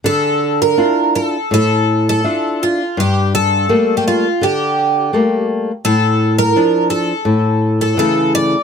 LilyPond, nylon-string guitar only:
\new Staff \with { instrumentName = "Nylon-string guitar" } { \time 4/4 \key d \minor \tempo 4 = 83 d4 <d' e' f'>4 a,4 <d' f' e''>4 | g,4 <g a bes>4 d4 <g a bes>4 | a,4 <f d'>4 a,4 <cis e a>4 | }